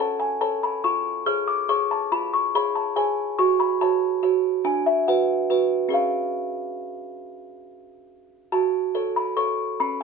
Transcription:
0.00 A4 C#5 A5
0.20 G#5
0.41 A4 C#5 A5
0.63 B5
0.84 F4 C#6
1.26 G#4 C#5 F6
1.48 D6
1.69 G#4 C#5 C#6
1.91 A5
2.12 F4 B5
2.34 C#6
2.55 G#4 C#5 B5
2.75 A5
2.96 G#4 C#5 G#5
3.39 F#4 C#6
3.60 B5
3.81 F#4 C#5 A5
4.23 F#4 C#5
4.65 D4 G#5
4.86 E5
5.08 F#4 B4 F#5
5.50 F#4 B4
5.89 C#4 G#4 C#5
5.94 F5
8.52 F#4 A5
8.95 A4 C#5
9.16 B5
9.37 A4 C#5 C#6
9.80 C#4 B5

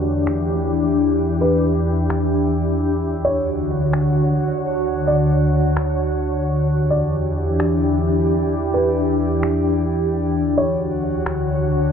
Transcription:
Already playing: E2 E3 D4 E4 G4 D5 G5
0.27 finger snap
1.18 E5
1.41 B4
1.87 open hi-hat
2.10 finger snap
3.02 D2 D3 D4 F#4 C#5 F#5
3.25 C#5
3.93 finger snap
5.07 D5
5.77 finger snap
6.68 E2 E3 D4 E4 G4 D5 G5
6.90 D5
7.60 finger snap
8.74 B4
9.20 open hi-hat
9.43 finger snap
10.35 D2 D3 D4 F#4 C#5 F#5
10.58 C#5
11.26 finger snap

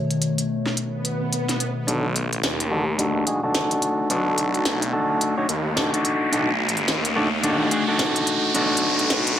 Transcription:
Already playing: B2 D#3 A3 D4 D#4 F#4 A4 C#5
0.11 closed hi-hat
0.22 closed hi-hat
0.38 closed hi-hat
0.66 snare
0.77 closed hi-hat, swell
1.05 closed hi-hat
1.33 closed hi-hat
1.49 snare, closed hi-hat
1.60 closed hi-hat
1.87 B1 A3 D4 D#4 F#4 A4, closed hi-hat, riser
2.16 closed hi-hat
2.33 closed hi-hat
2.43 D#2, snare, closed hi-hat
2.60 closed hi-hat
2.71 D4 D#4 F#4 A4
2.99 D4 D#4 F#4 A4, closed hi-hat
3.26 D4 D#4 F#4 G#4, closed hi-hat
3.43 D4 D#4 F#4 A4
3.55 snare, closed hi-hat
3.71 closed hi-hat
3.82 closed hi-hat
4.10 B1 D4 D#4 F#4 A4, closed hi-hat
4.38 closed hi-hat
4.54 closed hi-hat
4.65 B1, snare, closed hi-hat
4.82 closed hi-hat
4.93 D4 D#4 F#4 A4
5.21 closed hi-hat
5.38 D4 D#4 F#4 C#5
5.49 D#2, closed hi-hat
5.76 D4 D#4 F#4 A4, snare, closed hi-hat
5.93 D4 D#4 F#4 A4, closed hi-hat
6.05 closed hi-hat
6.32 B1 D4 D#4 F#4 A4, closed hi-hat
6.69 closed hi-hat
6.77 closed hi-hat
6.88 D#2, snare, closed hi-hat
7.05 closed hi-hat
7.16 D4 D#4 F#4 A4
7.43 D4 D#4 F#4 A4, closed hi-hat
7.71 D4 D#4 F#4 G#4, closed hi-hat
7.88 D4 D#4 F#4 A4
7.99 snare, closed hi-hat
8.16 closed hi-hat
8.27 closed hi-hat
8.54 B1 D4 D#4 F#4 A4, closed hi-hat
8.77 closed hi-hat
8.99 closed hi-hat
9.10 B1, snare, closed hi-hat
9.27 closed hi-hat

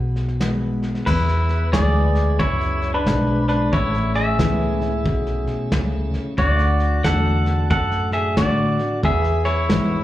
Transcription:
Already playing: B1 B2 G#4 B4 E5
0.16 snare
0.28 snare
0.40 E3 G#3 B3 E4, snare, hi-hat pedal
0.82 snare
0.95 snare
1.06 E2 B3 E4 G#4 B4 E5, kick, snare, crash
1.28 snare
1.49 snare
1.72 D2 E3 G#3 B3 E4 G#4 D5, kick, snare, hi-hat pedal
2.15 snare
2.39 C#2 F#2 E4 C#5, kick, snare
2.61 snare
2.82 snare
2.94 D4 B4
3.06 B1 G#2, kick, snare, hi-hat pedal
3.48 D4 B4, snare
3.72 A1 A2 G#3 A3 C#4 E4 B4 C#5 E5, kick, snare
3.93 A3, snare
3.99 C#5
4.15 G#4 E5, snare
4.38 C#2 E3 B3 C#4 E4, kick, snare, hi-hat pedal
4.80 C#4 E4, snare
5.05 B1 B2, kick, snare
5.27 snare
5.47 muted fingered electric bass stroke, snare
5.72 C#2 C#3, kick, snare, hi-hat pedal
6.13 muted fingered electric bass stroke, snare
6.38 D2 D3 A3 D4 F#4 C#5 D5, kick, snare
6.59 D5, snare
6.80 snare
7.04 E2 D3 A3 D4 F#4 A4 F#5, kick, snare, hi-hat pedal
7.46 snare
7.71 F#2 A2 A4 F#5, kick, snare
7.91 snare
8.12 G#4 E5, snare
8.37 A2 D3 A3 D4 F#4 D5, kick, snare, hi-hat pedal
8.78 F#4, snare
9.03 E2 E4 G#4 A4 B4 E5 F#5, kick, snare
9.24 G#4, snare
9.30 E5
9.45 E4 C#5, snare
9.69 G#2 E3 G#3 B3 E4, kick, snare, hi-hat pedal

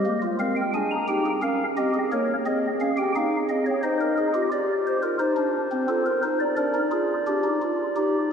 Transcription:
Already playing: D#5
0.06 A#3
0.22 F4
0.40 C4 A#4 F5
0.56 G5
0.74 D4 G#4 G#5
0.91 A#5
1.08 D#4 G4 G5
1.26 G#4
1.42 C#4 A#4 F5
1.77 C4 G4 D#5
1.94 G#4
2.12 A#3 A#4 C#5
2.46 C4 G#4 D#5
2.80 C#4 F5
2.97 G4 G5
3.16 D#4 G#4 F5
3.49 C4 D#5
3.66 C#5
3.83 D#4 C5 D#5
4.01 A#4
4.18 G#4
4.34 F4 G4
4.52 G4 D5
4.87 C5
5.03 F4 A#4
5.20 D#4 C5
5.37 D4
5.72 C4
5.88 F4 A4
6.06 A#4
6.23 D#4 C5
6.40 D5
6.57 D4 A#4 D5
6.74 D#4
6.91 F4 G#4
7.27 D4 G4
7.44 D#4
7.62 F4
7.96 D#4 G4

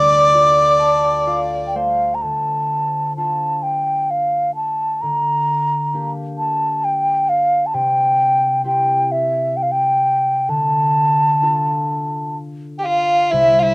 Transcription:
Already playing: D2 D3 A3 E4 G4 D5 D6
0.34 F4
0.79 A4 A5
1.04 G5
1.27 F4 F5
1.67 G5
1.75 A3 C5 F5
2.14 A#5
2.22 D3 A5
3.17 D4 F4 A5
3.63 G5
4.10 F5
4.55 A5
5.01 D3 A#5
5.94 A#3 D4 G4
6.38 A5
6.84 G5
7.29 F5
7.66 A5
7.74 C3 G5
8.64 C4 E4 G4 G5
9.12 E5
9.57 G5
9.63 F5
9.72 G5
10.49 D3 A5
11.41 D4 F4 A4
12.78 G4 G5
12.84 F4 F5
13.30 C2 C3 E4 E5
13.59 E4 F4 E5 F5

